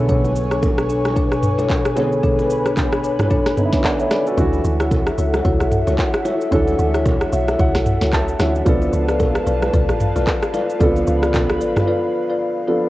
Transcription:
Already playing: analog synth bass B1, grand piano D3 B3 C#4 A4, analog synth pad B4 C#5 G#5 C#6
0.09 marimba D4 A4 C#5, kick, low conga, shaker
0.24 low bongo, shaker
0.36 shaker
0.51 marimba D4 A4 C#5, cross-stick, shaker
0.63 kick, high bongo, low conga, shaker
0.78 cross-stick, shaker
0.89 marimba D4 A4 C#5, shaker
1.05 cross-stick, low bongo, shaker
1.16 marimba D4 A4 C#5, kick, low conga, shaker
1.32 cross-stick, shaker
1.43 mid tom, shaker
1.58 marimba D4 A4 C#5, low bongo, shaker
1.70 kick, clap, high bongo, shaker
1.85 cross-stick, shaker
1.96 grand piano D3 B3 C#4 G#4, marimba D4 A4 C#5, analog synth pad B5, low bongo, shaker
2.12 shaker
2.23 marimba D4 A4 C#5, kick, low conga, shaker
2.39 low bongo, shaker
2.50 shaker
2.65 marimba D4 A4 C#5, cross-stick, shaker
2.77 kick, clap, high bongo, low conga, shaker
2.92 cross-stick, shaker
3.03 marimba D4 A4 C#5, shaker
3.19 cross-stick, mid tom, low bongo, shaker
3.30 marimba D4 A4 C#5, kick, low conga, shaker
3.46 cross-stick, snare, shaker
3.57 grand piano D3 B3 C#4 D#4, mid tom, shaker
3.65 grand piano E4
3.73 marimba D4 A4 C#5, kick, snare, low bongo, shaker
3.84 grand piano D5 F#5, kick, clap, high bongo, shaker
4.00 grand piano C#5 E5, shaker
4.11 marimba D4 A4 C#5, grand piano B4 D5, cross-stick, snare, low bongo, shaker
4.27 grand piano F#4 A4, shaker
4.37 log drum bass D2, grand piano E3 C#4 D4 F#4, marimba E4 F#4 C#5, analog synth pad A4 E5 F#5, kick, low conga, shaker
4.53 low bongo, shaker
4.64 log drum bass D2, shaker
4.80 marimba E4 F#4 C#5, cross-stick, shaker
4.91 kick, high bongo, low conga, shaker
5.07 cross-stick, shaker
5.18 log drum bass C#2, marimba E4 F#4 C#5, shaker
5.34 cross-stick, low bongo, shaker
5.45 log drum bass D2, marimba E4 F#4 C#5, kick, low conga, shaker
5.60 log drum bass B1, cross-stick, shaker
5.72 mid tom, shaker
5.87 log drum bass C#2, marimba E4 F#4 C#5, low bongo, shaker
5.98 kick, clap, high bongo, shaker
6.14 cross-stick, shaker
6.25 marimba E4 F#4 C#5, low bongo, shaker
6.41 shaker
6.51 log drum bass D2, grand piano E3 C#4 D4 A4, marimba E4 F#4 C#5, kick, low conga, shaker
6.68 low bongo, shaker
6.79 log drum bass D2, shaker
6.94 marimba E4 F#4 C#5, cross-stick, shaker
7.05 kick, high bongo, low conga, shaker
7.21 cross-stick, shaker
7.32 log drum bass B1, marimba E4 F#4 C#5, grand piano E5, shaker
7.48 cross-stick, low bongo, shaker
7.59 log drum bass C#2, marimba E4 F#4 C#5, grand piano F#5, kick, low conga, shaker
7.75 log drum bass B1, cross-stick, snare, shaker
7.86 mid tom, shaker
8.01 log drum bass C#2, marimba E4 F#4 C#5, snare, low bongo, shaker
8.13 grand piano A5, kick, clap, high bongo, shaker
8.28 shaker
8.39 log drum bass D2, grand piano E3 C#4 D4 E4, marimba E4 F#4 C#5, cross-stick, snare, low bongo, shaker
8.55 shaker
8.65 log drum bass C#2, grand piano F3 B3 D4 A4, marimba F4 A4 B4 D5, analog synth pad B4 F5 A5, kick, low conga, shaker
8.82 low bongo, shaker
8.93 log drum bass C#2, shaker
9.08 marimba F4 A4 B4 D5, cross-stick, shaker
9.20 kick, high bongo, low conga, shaker
9.35 cross-stick, shaker
9.46 log drum bass B1, marimba F4 A4 B4 D5, shaker
9.62 cross-stick, low bongo, shaker
9.73 log drum bass C#2, marimba F4 A4 B4 D5, kick, low conga, shaker
9.89 log drum bass A1, cross-stick, shaker
10.00 mid tom, shaker
10.16 log drum bass B1, marimba F4 A4 B4 D5, low bongo, shaker
10.27 kick, clap, high bongo, shaker
10.42 cross-stick, shaker
10.53 marimba F4 A4 B4 D5, low bongo, shaker
10.70 shaker
10.80 log drum bass C#2, grand piano D3 B3 D4 A4, marimba F4 A4 B4 D5, analog synth pad B5, kick, low conga, shaker
10.86 grand piano F3
10.96 low bongo, shaker
11.07 log drum bass C#2, shaker
11.23 marimba F4 A4 B4 D5, cross-stick, shaker
11.34 kick, clap, high bongo, low conga, shaker
11.49 cross-stick, shaker
11.61 log drum bass A1, marimba F4 A4 B4 D5, shaker
11.76 cross-stick, mid tom, low bongo, shaker
11.87 marimba F4 A4 B4 D5
12.30 marimba F4 A4 B4 D5
12.68 grand piano F3 B3 D4 A4, marimba F4 A4 B4 D5

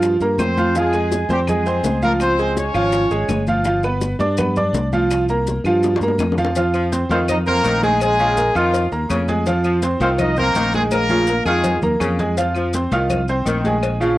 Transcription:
Already playing: fingered electric bass G2, upright piano F3 F4 F5
0.03 high bongo, high conga, maracas
0.20 fingered electric bass G2, upright piano A#3 A#4 A#5, high conga, maracas
0.38 fingered electric bass F2, horn section C4 C5, high bongo, low bongo, high conga, claves, maracas
0.57 upright piano F3 F4 F5, high bongo, high conga, maracas
0.75 upright piano F3 F4 F5, horn section G#3 G#4, high bongo, maracas
0.93 upright piano G#3 G#4 G#5, high bongo, high conga, claves, maracas
1.12 high bongo, high conga, maracas
1.29 fingered electric bass F2, horn section G3 G4, upright piano C4 C5 C6, high bongo, high conga, maracas
1.47 upright piano G#3 G#4 G#5, horn section G#3 G#4, high bongo, high conga, low conga, claves, maracas
1.66 upright piano C4 C5 C6, maracas
1.83 fingered electric bass C#2, high bongo, low bongo, high conga, maracas
2.02 upright piano F3 F4 F5, horn section A#3 A#4, high bongo, high conga, maracas
2.20 horn section C4 C5, high bongo, high conga, claves, maracas
2.38 upright piano G#3 G#4 G#5, high bongo, high conga, maracas
2.57 horn section C#4 C#5, high bongo, high conga, maracas
2.74 fingered electric bass G#1, upright piano F3 F4 F5, high bongo, high conga, claves, maracas
2.92 high bongo, high conga, maracas
3.10 fingered electric bass G#1, upright piano G#3 G#4 G#5, high conga, maracas
3.28 fingered electric bass G1, high bongo, low bongo, high conga, claves, maracas
3.47 upright piano F3 F4 F5, high bongo, high conga, maracas
3.64 upright piano F3 F4 F5, high bongo, high conga, maracas
3.83 upright piano B3 B4 B5, high bongo, high conga, claves, maracas
4.01 high bongo, high conga, maracas
4.19 fingered electric bass G2, upright piano D4 D5 D6, high bongo, high conga, maracas
4.37 upright piano B3 B4 B5, high bongo, high conga, low conga, claves, maracas
4.56 upright piano D4 D5 D6, high conga, low conga, maracas
4.73 fingered electric bass C2, high bongo, low bongo, high conga, maracas
4.92 upright piano F3 F4 F5, high bongo, high conga, maracas
5.10 high bongo, claves, maracas
5.29 upright piano A#3 A#4 A#5, high bongo, high conga, maracas
5.47 high bongo, high conga, maracas
5.64 fingered electric bass G2, upright piano F3 F4 F5, high bongo, high conga, claves, maracas
5.83 high bongo, high conga, maracas
5.96 fingered electric bass G2, high bongo
6.01 upright piano A#3 A#4 A#5, high conga, maracas
6.08 high bongo
6.18 fingered electric bass F2, low bongo, high conga, claves, maracas
6.32 low bongo
6.38 upright piano F3 F4 F5, low conga, maracas
6.45 low bongo
6.55 upright piano F3 F4 F5, cowbell, high conga, maracas
6.74 saxophone section F3, high conga, claves, maracas
6.92 upright piano C4 C5 C6, cowbell, high conga, maracas
7.09 fingered electric bass F2, saxophone section D#3, horn section C4 C5, upright piano F4 F5 F6, cowbell, high conga, maracas
7.28 horn section D#4 D#5, cowbell, high conga, low conga, claves, maracas
7.46 horn section A#3 A#4, upright piano C4 C5 C6, high conga, low conga, maracas
7.64 fingered electric bass A#1, saxophone section D#3, cowbell, high conga, maracas
7.83 upright piano G#3 G#4 G#5, horn section G#3 G#4, cowbell, high conga, maracas
8.00 horn section G#3 G#4, cowbell, high conga, claves, maracas
8.19 saxophone section C#3, upright piano F3 F4 F5, high conga, maracas
8.37 upright piano A#3 A#4 A#5, cowbell, high conga, maracas
8.55 fingered electric bass F2, saxophone section D#3, horn section F3 F4, upright piano F4 F5 F6, high conga, claves, maracas
8.74 cowbell, high conga, maracas
8.92 fingered electric bass D#2, upright piano A#3 A#4 A#5, high conga, maracas
9.10 fingered electric bass F2, saxophone section C#3, cowbell, high conga, claves, maracas
9.28 upright piano G#3 G#4 G#5, cowbell, high conga, maracas
9.46 upright piano F3 F4 F5, cowbell, maracas
9.64 saxophone section F3, high conga, claves, maracas
9.82 upright piano C4 C5 C6, cowbell, high conga, maracas
10.00 fingered electric bass C2, saxophone section D#3, horn section C4 C5, upright piano F4 F5 F6, cowbell, high conga, maracas
10.19 horn section D#4 D#5, cowbell, high conga, low conga, claves, maracas
10.37 horn section A#3 A#4, upright piano C4 C5 C6, high conga, low conga, maracas
10.54 fingered electric bass A#1, saxophone section D#3, cowbell, high conga, maracas
10.73 upright piano G#3 G#4 G#5, horn section G#3 G#4, cowbell, high conga, maracas
10.91 horn section A#3 A#4, cowbell, high conga, claves, maracas
11.09 saxophone section C#3, upright piano F3 F4 F5, high conga, maracas
11.27 upright piano A#3 A#4 A#5, cowbell, maracas
11.45 fingered electric bass F2, saxophone section D#3, horn section G#3 G#4, upright piano F4 F5 F6, claves, maracas
11.64 cowbell, low conga, maracas
11.82 fingered electric bass D#2, upright piano A#3 A#4 A#5, low conga, maracas
12.00 fingered electric bass F2, saxophone section C#3, cowbell, low conga, claves, maracas
12.19 upright piano G#3 G#4 G#5, cowbell, low conga, maracas
12.37 upright piano F3 F4 F5, cowbell, maracas
12.54 saxophone section F3, high conga, claves, maracas
12.73 upright piano C4 C5 C6, cowbell, high conga, maracas
12.91 fingered electric bass C2, saxophone section D#3, upright piano F4 F5 F6, cowbell, high conga, maracas
13.10 cowbell, high conga, low conga, claves, maracas
13.28 upright piano C4 C5 C6, maracas
13.45 fingered electric bass A#1, saxophone section D#3, cowbell, high conga, maracas
13.64 upright piano G#3 G#4 G#5, cowbell, high conga, maracas
13.83 cowbell, high conga, claves, maracas
14.00 saxophone section C#3, upright piano F3 F4 F5, high conga, maracas

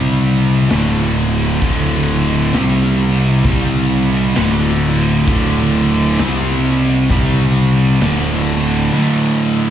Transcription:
Already playing: picked electric bass C2, distorted electric guitar C3 G3 C4
0.37 crash
0.69 picked electric bass D1, distorted electric guitar D2 A2 D3, snare, crash
1.29 crash
1.61 picked electric bass D1, distorted electric guitar D2 A2 D3, kick, crash
2.20 crash
2.53 picked electric bass C2, distorted electric guitar C3 G3 C4, snare, crash
3.12 crash
3.44 picked electric bass C2, distorted electric guitar C3 G3 C4, kick, crash
4.02 crash
4.35 picked electric bass D1, distorted electric guitar D2 A2 D3, snare, crash
4.94 crash
5.27 picked electric bass D1, distorted electric guitar D2 A2 D3, kick, crash
5.85 crash
6.18 picked electric bass C2, distorted electric guitar C3 G3 C4, snare, crash
6.77 crash
7.10 picked electric bass C2, distorted electric guitar C3 G3 C4, kick, crash
7.68 crash
8.01 picked electric bass D1, distorted electric guitar D2 A2 D3, snare, crash
8.60 crash
8.93 distorted electric guitar D2 A2 D3

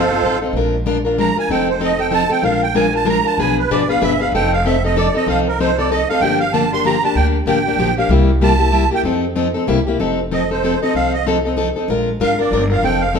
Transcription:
Already playing: upright bass G1, accordion F4 A4 C5 F5
0.11 steel-string acoustic guitar C4 D#4 A4
0.22 upright bass A1, steel-string acoustic guitar F3 C4 D#4 A4
0.42 steel-string acoustic guitar C4 D#4 A4
0.53 upright bass A#1, steel-string acoustic guitar F3 G#3 D4 F4 A#4
0.86 steel-string acoustic guitar F3 G#3 D4 F4 A#4
1.05 steel-string acoustic guitar D4 F4 A#4
1.18 steel-string acoustic guitar F3 G#3 D4 F4 A#4, accordion A#5
1.36 steel-string acoustic guitar D4 F4 A#4, accordion G#5
1.48 upright bass F1, steel-string acoustic guitar F3 C4 D#4 A4, accordion G5
1.70 accordion C5
1.80 steel-string acoustic guitar F3 C4 D#4 A4, accordion D#5
1.99 steel-string acoustic guitar C4 D#4 A4, accordion G5
2.11 steel-string acoustic guitar F3 C4 D#4 A4, accordion A5
2.29 steel-string acoustic guitar C4 D#4 A4, accordion G5
2.42 upright bass A#1, steel-string acoustic guitar F3 G#3 D4 F4 A#4, accordion F5
2.63 accordion G5
2.75 steel-string acoustic guitar F3 G#3 D4 F4 A#4, accordion G#5
2.93 steel-string acoustic guitar D4 F4 A#4, accordion A5
3.05 steel-string acoustic guitar F3 G#3 D4 F4 A#4
3.09 accordion A#5
3.24 steel-string acoustic guitar D4 F4 A#4, accordion A5
3.38 upright bass B1, steel-string acoustic guitar B2 F3 B3 D4 G#4 B4, accordion G#5
3.59 accordion B4
3.69 upright bass G#1, steel-string acoustic guitar B2 F3 B3 D4 G#4 B4, accordion D5
3.89 steel-string acoustic guitar B3 D4 G#4 B4, accordion F5
4.01 upright bass G1, steel-string acoustic guitar B2 F3 B3 D4 G#4 B4, accordion E5
4.20 steel-string acoustic guitar B3 D4 G#4 B4, accordion F5
4.32 upright bass F1, steel-string acoustic guitar F3 C4 D#4 A4, accordion G5
4.53 accordion F5
4.66 steel-string acoustic guitar F3 C4 D#4 A4, accordion E5
4.84 steel-string acoustic guitar C4 D#4 A4, accordion D#5
4.96 steel-string acoustic guitar F3 C4 D#4 A4, accordion D5
5.14 steel-string acoustic guitar C4 D#4 A4, accordion D#5
5.27 upright bass C2, steel-string acoustic guitar F3 C4 D#4 A4, accordion F5
5.48 accordion A#4
5.60 steel-string acoustic guitar F3 C4 D#4 A4, accordion C5
5.78 steel-string acoustic guitar C4 D#4 A4, accordion D5
5.91 steel-string acoustic guitar F3 C4 D#4 A4, accordion D#5
6.09 steel-string acoustic guitar C4 D#4 A4, accordion F5
6.20 upright bass G1, steel-string acoustic guitar D3 F3 A#3 D4 G4, accordion G5
6.40 accordion F5
6.53 steel-string acoustic guitar D3 F3 A#3 D4 G4, accordion A5
6.72 steel-string acoustic guitar A#3 D4 G4, accordion C6
6.84 steel-string acoustic guitar D3 F3 A#3 D4 G4, accordion A#5
7.04 steel-string acoustic guitar A#3 D4 G4, accordion A5
7.15 upright bass D2, steel-string acoustic guitar D3 F3 A#3 D4 G4, accordion G5
7.46 upright bass A1, steel-string acoustic guitar D3 F3 A#3 D4 G4, accordion G5
7.67 steel-string acoustic guitar A#3 D4 G4
7.77 upright bass A#1, steel-string acoustic guitar D3 F3 A#3 D4 G4
7.97 steel-string acoustic guitar A#3 D4 G4, accordion F5
8.09 upright bass C2, steel-string acoustic guitar C3 G3 A#3 E4 G4
8.41 steel-string acoustic guitar C3 G3 A#3 E4 G4, accordion A5
8.59 steel-string acoustic guitar A#3 E4 G4
8.71 steel-string acoustic guitar C3 G3 A#3 E4 G4
8.91 steel-string acoustic guitar A#3 E4 G4, accordion G5
9.03 upright bass F2, steel-string acoustic guitar F3 C4 D#4 A4
9.36 steel-string acoustic guitar F3 C4 D#4 A4
9.54 steel-string acoustic guitar C4 D#4 A4
9.67 upright bass C2, steel-string acoustic guitar C3 G3 A#3 E4 G4
9.87 steel-string acoustic guitar A#3 E4 G4
9.99 upright bass F1, steel-string acoustic guitar F3 C4 D#4 A4
10.31 steel-string acoustic guitar F3 C4 D#4 A4, accordion D#5
10.51 steel-string acoustic guitar C4 D#4 A4, accordion C5
10.63 steel-string acoustic guitar F3 C4 D#4 A4
10.82 steel-string acoustic guitar C4 D#4 A4, accordion D#5
10.94 upright bass C2, steel-string acoustic guitar F3 C4 D#4 A4, accordion F5
11.14 accordion D#5
11.26 steel-string acoustic guitar F3 C4 D#4 A4
11.45 steel-string acoustic guitar C4 D#4 A4
11.57 steel-string acoustic guitar F3 C4 D#4 A4
11.76 steel-string acoustic guitar C4 D#4 A4
11.88 upright bass A#1, steel-string acoustic guitar F3 G#3 D4 F4 A#4
12.20 upright bass G#1, steel-string acoustic guitar F3 G#3 D4 F4 A#4, accordion F5
12.39 steel-string acoustic guitar D4 F4 A#4, accordion D5
12.51 upright bass G1, steel-string acoustic guitar F3 G#3 D4 F4 A#4
12.70 steel-string acoustic guitar D4 F4 A#4, accordion F5
12.82 upright bass F1, steel-string acoustic guitar F3 C4 D#4 A4, accordion G5
13.01 accordion F5
13.14 steel-string acoustic guitar F3 C4 D#4 A4

